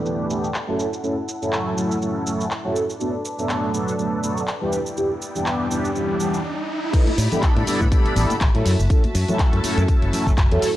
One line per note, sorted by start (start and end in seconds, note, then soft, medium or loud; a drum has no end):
0.00 0.77 D4 medium
0.00 0.77 A4 medium
0.00 0.77 B4 medium
0.00 0.77 G5 medium
0.05 0.27 E3 medium
0.05 0.27 A3 medium
0.05 0.27 B3 medium
0.05 0.27 D4 medium
0.05 0.27 G4 medium
0.05 shaker soft
0.29 0.48 E3 medium
0.29 0.48 A3 medium
0.29 0.49 B3 medium
0.29 0.49 D4 medium
0.29 0.49 G4 medium
0.29 shaker medium
0.44 shaker soft
0.54 clap loud
0.54 shaker soft
0.67 0.85 F#3 loud
0.67 0.85 A3 medium
0.67 0.85 C#4 medium
0.67 0.85 E4 medium
0.67 0.86 A4 loud
0.79 2.98 E4 medium
0.79 2.98 A4 medium
0.79 2.98 F#5 medium
0.79 shaker medium
0.93 shaker soft
1.03 1.16 F#3 medium
1.03 1.16 A3 medium
1.03 1.16 C#4 medium
1.03 1.16 E4 medium
1.03 1.16 A4 medium
1.03 shaker soft
1.29 shaker medium
1.41 1.74 F#3 medium
1.41 1.74 A3 medium
1.41 1.74 C#4 medium
1.41 1.74 E4 medium
1.41 1.75 A4 loud
1.41 shaker soft
1.53 clap loud
1.53 shaker soft
1.77 1.96 F#3 loud
1.77 1.96 A3 medium
1.77 1.96 C#4 medium
1.77 1.96 E4 medium
1.77 1.96 A4 loud
1.77 shaker medium
1.91 shaker soft
2.01 2.23 F#3 medium
2.01 2.23 A3 medium
2.01 2.24 C#4 medium
2.01 2.24 E4 medium
2.01 2.24 A4 medium
2.01 shaker soft
2.26 2.45 F#3 medium
2.26 2.45 A3 medium
2.26 2.45 C#4 medium
2.26 2.45 E4 medium
2.26 2.45 A4 loud
2.26 shaker medium
2.41 shaker soft
2.51 clap loud
2.51 shaker soft
2.64 2.82 F#3 loud
2.64 2.82 A3 medium
2.64 2.82 C#4 medium
2.64 2.82 E4 medium
2.64 2.82 A4 loud
2.76 shaker medium
2.90 shaker soft
2.99 3.13 F#3 medium
2.99 3.13 A3 medium
2.99 3.13 B3 medium
2.99 4.70 D4 medium
2.99 3.13 D4 medium
2.99 3.13 A4 medium
2.99 4.70 B4 medium
2.99 4.70 A5 medium
2.99 riser medium
2.99 shaker soft
3.25 shaker medium
3.38 3.71 F#3 medium
3.38 3.71 A3 medium
3.38 3.71 B3 medium
3.38 3.71 D4 medium
3.38 3.71 A4 loud
3.38 shaker soft
3.49 clap loud
3.49 shaker soft
3.73 3.93 F#3 medium
3.73 3.93 A3 medium
3.73 3.93 B3 medium
3.73 3.93 D4 medium
3.73 3.93 A4 loud
3.73 shaker medium
3.88 shaker soft
3.98 4.20 F#3 medium
3.98 4.20 A3 medium
3.98 4.20 B3 medium
3.98 4.21 D4 medium
3.98 4.21 A4 medium
3.98 shaker soft
4.23 4.42 F#3 medium
4.23 4.42 A3 medium
4.23 4.42 B3 medium
4.23 4.42 D4 medium
4.23 4.42 A4 medium
4.23 shaker medium
4.37 shaker soft
4.48 clap loud
4.48 shaker soft
4.61 4.79 E3 loud
4.61 4.79 G3 medium
4.61 4.79 B3 medium
4.61 4.79 D4 medium
4.61 4.79 G4 loud
4.72 6.91 E4 medium
4.72 6.91 D5 medium
4.72 6.91 G5 medium
4.72 shaker medium
4.86 shaker soft
4.97 5.09 E3 medium
4.97 5.09 G3 medium
4.97 5.10 B3 medium
4.97 5.10 D4 medium
4.97 5.10 G4 medium
4.97 shaker soft
5.22 shaker medium
5.35 5.68 E3 loud
5.35 5.68 G3 medium
5.35 5.68 B3 medium
5.35 5.68 D4 medium
5.35 5.68 G4 loud
5.35 shaker soft
5.46 clap loud
5.46 shaker soft
5.70 5.89 E3 medium
5.70 5.89 G3 medium
5.70 5.89 B3 medium
5.70 5.90 D4 medium
5.70 5.90 G4 loud
5.70 shaker medium
5.85 shaker soft
5.95 6.17 E3 medium
5.95 6.17 G3 medium
5.95 6.17 B3 medium
5.95 6.17 D4 medium
5.95 6.17 G4 medium
5.95 shaker soft
6.19 6.39 E3 medium
6.19 6.39 G3 medium
6.19 6.39 B3 medium
6.19 6.39 D4 medium
6.19 6.39 G4 loud
6.19 shaker medium
6.34 shaker soft
6.93 7.06 G3 medium
6.93 7.06 B3 medium
6.93 7.06 D4 medium
6.93 7.06 E4 medium
6.93 8.64 G4 medium
6.93 7.06 A4 medium
6.93 8.64 D5 medium
6.93 8.64 B5 medium
6.93 kick loud
6.93 closed hi-hat medium
6.93 crash loud
6.93 tambourine medium
6.93 shaker soft
7.07 muted fingered electric bass stroke soft
7.07 closed hi-hat soft
7.07 tambourine soft
7.07 high conga medium
7.18 7.26 A2 loud
7.18 open hi-hat loud
7.18 tambourine medium
7.18 shaker medium
7.31 7.64 G3 loud
7.31 7.64 B3 medium
7.31 7.65 D4 medium
7.31 7.65 E4 medium
7.31 7.65 A4 loud
7.31 closed hi-hat soft
7.31 tambourine soft
7.31 low conga medium
7.31 shaker soft
7.42 kick loud
7.42 clap loud
7.42 closed hi-hat loud
7.42 tambourine medium
7.42 shaker soft
7.56 7.63 A2 medium
7.56 closed hi-hat soft
7.56 tambourine soft
7.67 7.86 G3 loud
7.67 7.86 B3 medium
7.67 7.86 D4 medium
7.67 7.86 E4 medium
7.67 7.86 A4 loud
7.67 muted fingered electric bass stroke soft
7.67 open hi-hat loud
7.67 tambourine loud
7.67 high conga medium
7.67 shaker medium
7.81 7.88 A2 medium
7.81 kick medium
7.81 tambourine soft
7.81 shaker soft
7.91 8.13 G3 medium
7.91 8.14 B3 medium
7.91 8.14 D4 medium
7.91 8.14 E4 medium
7.91 8.14 A4 medium
7.91 kick loud
7.91 closed hi-hat medium
7.91 tambourine medium
7.91 shaker soft
8.05 muted fingered electric bass stroke soft
8.05 closed hi-hat soft
8.05 tambourine soft
8.16 8.25 A1 medium
8.16 8.35 G3 medium
8.16 8.35 B3 medium
8.16 8.35 D4 medium
8.16 8.35 E4 medium
8.16 8.35 A4 loud
8.16 open hi-hat loud
8.16 tambourine medium
8.16 low conga medium
8.16 shaker medium
8.30 muted fingered electric bass stroke soft
8.30 closed hi-hat soft
8.30 tambourine soft
8.30 high conga loud
8.30 shaker soft
8.40 8.49 A1 medium
8.40 kick loud
8.40 clap loud
8.40 closed hi-hat loud
8.40 tambourine medium
8.40 shaker soft
8.54 8.61 A2 loud
8.54 8.72 F#3 loud
8.54 8.72 A3 loud
8.54 8.72 C#4 medium
8.54 8.72 E4 medium
8.54 8.72 A4 loud
8.54 closed hi-hat soft
8.54 tambourine soft
8.65 8.74 F#2 medium
8.65 10.77 F#4 medium
8.65 10.77 E5 medium
8.65 10.77 A5 medium
8.65 open hi-hat loud
8.65 tambourine loud
8.65 shaker medium
8.79 8.86 F#1 medium
8.79 tambourine soft
8.79 shaker soft
8.90 9.03 F#3 medium
8.90 9.03 A3 medium
8.90 9.03 C#4 medium
8.90 9.03 E4 medium
8.90 9.03 A4 medium
8.90 kick loud
8.90 closed hi-hat medium
8.90 tambourine medium
8.90 shaker soft
9.04 muted fingered electric bass stroke soft
9.04 closed hi-hat soft
9.04 tambourine soft
9.04 high conga medium
9.15 9.23 F#2 loud
9.15 open hi-hat loud
9.15 tambourine medium
9.15 shaker medium
9.28 9.61 F#3 medium
9.28 9.61 A3 medium
9.28 9.61 C#4 medium
9.28 9.61 E4 medium
9.28 9.61 A4 loud
9.28 closed hi-hat soft
9.28 tambourine soft
9.28 low conga loud
9.28 shaker soft
9.39 kick loud
9.39 clap loud
9.39 closed hi-hat loud
9.39 tambourine medium
9.39 shaker soft
9.53 9.60 F#2 medium
9.53 closed hi-hat soft
9.53 tambourine soft
9.63 9.83 F#3 loud
9.63 9.83 A3 medium
9.63 9.83 C#4 medium
9.63 9.83 E4 medium
9.63 9.83 A4 loud
9.63 muted fingered electric bass stroke soft
9.63 open hi-hat loud
9.63 tambourine loud
9.63 high conga medium
9.63 shaker medium
9.77 9.84 F#2 medium
9.77 closed hi-hat soft
9.77 tambourine soft
9.77 shaker soft
9.88 10.10 F#3 medium
9.88 10.10 A3 medium
9.88 10.10 C#4 medium
9.88 10.11 E4 medium
9.88 10.11 A4 medium
9.88 kick loud
9.88 closed hi-hat medium
9.88 tambourine medium
9.88 shaker soft
10.02 10.09 F#1 medium
10.02 closed hi-hat soft
10.02 tambourine soft
10.12 10.32 F#3 medium
10.12 10.32 A3 medium
10.12 10.32 C#4 medium
10.12 10.32 E4 medium
10.12 10.32 A4 loud
10.12 open hi-hat loud
10.12 tambourine medium
10.12 low conga medium
10.12 shaker medium
10.27 10.33 F#1 loud
10.27 kick medium
10.27 closed hi-hat soft
10.27 tambourine soft
10.27 high conga loud
10.27 shaker soft
10.37 10.46 F#1 medium
10.37 kick loud
10.37 clap loud
10.37 closed hi-hat medium
10.37 tambourine medium
10.37 shaker soft
10.51 10.62 E2 medium
10.51 10.69 F#3 loud
10.51 10.69 A3 medium
10.51 10.69 C#4 medium
10.51 10.69 E4 medium
10.51 10.69 A4 loud
10.51 closed hi-hat soft
10.51 tambourine soft
10.62 muted fingered electric bass stroke soft
10.62 open hi-hat loud
10.62 tambourine medium
10.62 shaker medium